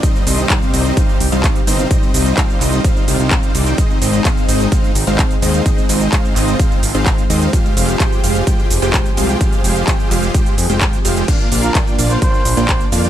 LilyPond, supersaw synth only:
\new Staff \with { instrumentName = "Supersaw synth" } { \time 4/4 \key c \minor \tempo 4 = 128 <g c' ees' c'' ees''>8 <g c' ees' c'' ees''>8 <g c' ees' c'' f''>8 <g c' ees' c'' ees''>8 <g c' ees' c'' f''>8 r16 <g c' ees' c'' f''>16 <g c' ees' c'' f''>16 r16 <g c' ees' c'' ees''>16 <g c' ees' c'' f''>16 | <g c' ees' c'' ees''>8 <g c' ees' c'' ees''>8 <g c' ees' c'' f''>8 <g c' ees' c'' ees''>8 <g c' ees' c'' f''>8 <g c' ees' c'' f''>8 <g c' ees' c'' f''>8 <g c' ees' c'' d''>16 <g c' ees' c'' g''>16 | <aes c' ees' c'' ees''>8 <aes c' ees' c'' ees''>8 <aes c' ees' c'' f''>8 <aes c' ees' c'' ees''>8 <aes c' ees' c'' f''>8 r16 <aes c' ees' c'' f''>16 <aes c' ees' c'' f''>16 r16 <aes c' ees' c'' ees''>16 <aes c' ees' c'' f''>16 | <aes c' ees' c'' ees''>8 <aes c' ees' c'' ees''>8 <aes c' ees' c'' f''>8 <aes c' ees' c'' ees''>8 <aes c' ees' c'' f''>8 r16 <aes c' ees' c'' f''>16 <aes c' ees' c'' f''>16 r16 <aes c' ees' c'' ees''>16 <aes c' ees' c'' f''>16 |
<aes f' g' c'' f''>8 <aes f' g' c'' f''>8 <aes f' g' c'' g''>8 <aes f' g' c'' f''>8 <aes f' g' c'' g''>8 r16 <aes f' g' c'' g''>16 <aes f' g' c'' g''>16 r16 <aes f' g' c'' f''>16 <aes f' g' c'' g''>16 | <aes f' g' c'' f''>8 <aes f' g' c'' f''>8 <aes f' g' c'' g''>8 <aes f' g' c'' f''>8 <aes f' g' c'' g''>8 r16 <aes f' g' c'' g''>16 <aes f' g' c'' g''>16 r16 <aes f' g' c'' f''>16 <aes f' g' c'' g''>16 | <bes d' f' d'' f''>8 <bes d' f' d'' f''>8 <bes d' f' d'' g''>8 <bes d' f' d'' f''>8 <bes d' f' d'' g''>8 r16 <bes d' f' d'' g''>16 <bes d' f' d'' g''>16 r16 <bes d' f' d'' f''>16 <bes d' f' d'' g''>16 | }